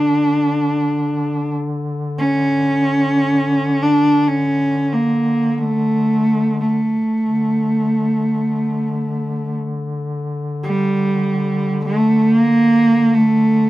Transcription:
Already playing: D3 D4
2.19 C#4
3.83 D4
4.28 C#4
4.93 A#3
5.58 A3
6.61 A3
7.22 D3
10.64 G3
11.85 A3
12.22 A3
12.34 A#3
13.14 A3

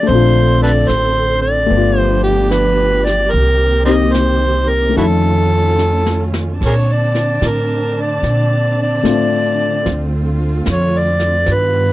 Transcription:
Already playing: F#4 D5
0.03 D3 A3 C4 A4
0.07 A#1 C4 D4 C5, brush sweep
0.14 F4
0.63 A4 B4 D5
0.89 A1 C5, snare, hi-hat pedal
1.42 D5
1.66 G1 A3 B3 D4
1.70 F3 D4 G4, brush sweep
1.77 F4
1.98 C5
2.24 G4
2.51 B4, snare, hi-hat pedal
3.05 D5, snare
3.32 C2 D#3 A#3 C4 A#4, brush sweep
3.85 A#3 C4 D#4 G4 A#4 C5 D#5
4.13 C5, snare, hi-hat pedal
4.69 A#4
4.89 A3
4.94 F2 A3 C#4 D#4 E4 F4 F#4 A4, brush sweep
5.01 A4
5.79 snare, hi-hat pedal
6.06 snare
6.34 snare
6.59 A#2 D3 C4 D4 A5, brush sweep, kick, snare, ride
6.66 G#4 A#4 C#5
6.93 D5
7.15 snare
7.41 A2, snare, hi-hat pedal
7.48 A#4
8.01 D5
8.22 A#2, brush sweep, snare
8.83 D5
9.03 A2 A3 C4 D4 F4, snare, hi-hat pedal
9.86 D2 A3 F4, brush sweep, snare
10.66 F2, snare, hi-hat pedal
10.71 C#5
10.98 D5
11.19 snare
11.46 G2 D#3 G3 B3 F4, brush sweep, snare
11.54 B4

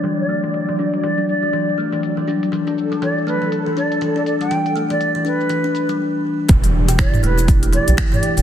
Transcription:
Already playing: F#3 G3 D5
0.04 E3, closed hi-hat, shaker
0.20 D5, shaker
0.29 A3, closed hi-hat, shaker
0.44 E3, closed hi-hat, shaker
0.54 closed hi-hat, shaker
0.69 E3, closed hi-hat, shaker
0.79 D4, shaker
0.94 closed hi-hat, shaker
1.03 E3 D5, closed hi-hat, shaker
1.18 D4, shaker
1.28 D5, shaker
1.43 G3, shaker
1.53 E3, closed hi-hat, shaker
1.69 shaker
1.78 A3, shaker
1.93 E3, closed hi-hat, shaker
2.03 closed hi-hat, shaker
2.17 E3, shaker
2.28 D4, closed hi-hat, shaker
2.43 closed hi-hat, shaker
2.52 E3 A4, closed hi-hat, shaker
2.67 D4, closed hi-hat, shaker
2.78 shaker
2.92 G3, closed hi-hat, shaker
3.02 E3 D5, closed hi-hat, shaker
3.18 shaker
3.27 A3 B4, shaker
3.42 E3, shaker
3.52 closed hi-hat, shaker
3.66 E3, shaker
3.77 D4 D5, shaker
3.92 closed hi-hat, shaker
4.01 E3, closed hi-hat, shaker
4.16 D4 D5, shaker
4.26 D5, closed hi-hat, shaker
4.40 G3 G5, closed hi-hat, shaker
4.51 E3, closed hi-hat, shaker
4.66 closed hi-hat, shaker
4.76 A3, shaker
4.90 E3 D5, closed hi-hat, shaker
5.01 closed hi-hat, shaker
5.15 E3, shaker
5.25 D4 B4, shaker
5.40 shaker
5.49 E3, closed hi-hat, shaker
5.64 D4, shaker
5.75 closed hi-hat, shaker
5.89 G3, closed hi-hat, shaker
6.49 E1 E3 D4 G4, kick, closed hi-hat, impact, shaker
6.64 E3, closed hi-hat, shaker
6.88 B2, closed hi-hat, shaker
6.98 E4 D5, finger snap, kick, shaker
7.14 mid tom, shaker
7.23 E1 A3 B4, closed hi-hat
7.38 E4, shaker
7.48 kick, closed hi-hat, shaker
7.63 A3, closed hi-hat, shaker
7.73 E3 D5, closed hi-hat
7.88 B1, closed hi-hat, shaker
7.97 E3, finger snap, kick, closed hi-hat, shaker
8.12 E3 D5, mid tom, shaker
8.23 closed hi-hat
8.37 E1 B2, closed hi-hat, shaker

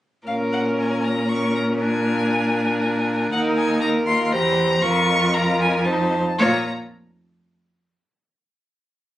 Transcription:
0.27 A#2 C#4 A#4 F5
0.53 F#5
0.79 G#5
1.05 A#5
1.29 C#4 A#4 C#6
1.55 A#5
1.80 D4 A#4 G#5
3.32 D#2 D#4 A#4 F#5
3.57 G#5
3.81 D#4 A#4 A#5
4.07 F4 C6
4.25 C6
4.32 E2 G4 C5 A#5
4.82 F2 F4 A#4 C#6
5.33 F4 A#4 A#5
5.60 G#5
5.85 D#4 C5 A5
6.38 A#2 F4 C#5 A#5

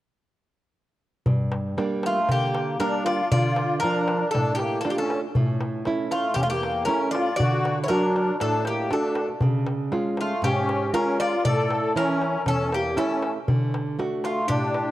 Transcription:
1.26 G2, darbuka dum
1.52 darbuka tek
1.77 G3 A#3 D4, darbuka tek
2.03 A3 F4, darbuka tek
2.29 D3 A#3 G4, darbuka tek, darbuka dum
2.55 darbuka tek
2.79 G3 A#3 D4 A#4, darbuka tek
3.04 F4 D5, darbuka tek
3.31 D3 F4 D5, darbuka dum
3.56 darbuka tek
3.80 F3 D4 A#4, darbuka tek
3.84 F4
4.08 darbuka tek
4.31 A2 D4 A4, darbuka tek, darbuka dum
4.55 G4
4.59 A#3, darbuka tek
4.81 D4 A4, darbuka tek
4.85 A3 D4 F4
4.90 A#3 G4
4.98 C#4 A4
5.10 darbuka tek
5.35 A2, darbuka dum
5.61 darbuka tek
5.85 A3 C#4 E4, darbuka tek
6.11 A3 F4, darbuka tek
6.34 E2 C#4 G4, darbuka tek, darbuka dum
6.43 A3 F4
6.50 A#3 G4
6.63 darbuka tek
6.85 A3 C#4 E4 A#4, darbuka tek
7.11 F4 D5, darbuka tek
7.36 D3 F#4 D5, darbuka dum
7.65 darbuka tek
7.78 darbuka tek
7.82 E4 C#5
7.88 F#3 D4 F#4 A#4, darbuka tek
8.16 darbuka tek
8.29 darbuka tek
8.39 A2 D4 A4, darbuka tek
8.65 A#3 G4, darbuka tek
8.90 A3 D4 F#4 A4, darbuka tek
9.15 darbuka tek
9.29 darbuka tek
9.41 C#3, darbuka dum
9.67 darbuka tek
9.92 G#3 C#4 F4, darbuka tek
10.17 A3 F4, darbuka tek
10.42 G#2 C#4 G4, darbuka tek, darbuka dum
10.69 darbuka tek
10.93 G#3 C#4 F4 A#4, darbuka tek
11.20 F4 D5, darbuka tek
11.45 A2 A4 D5, darbuka dum
11.71 darbuka tek
11.96 E3 C#4 E4 A#4, darbuka tek
12.21 darbuka tek
12.46 E2 C#4 A4, darbuka tek, darbuka dum
12.71 A#3 G4, darbuka tek
12.95 A3 C#4 E4 A4, darbuka tek
13.23 darbuka tek
13.48 D3, darbuka dum
13.74 darbuka tek
13.99 A3 D4 F#4, darbuka tek
14.22 A3 F4, darbuka tek
14.47 A2 D4 G4, darbuka tek, darbuka dum
14.74 darbuka tek

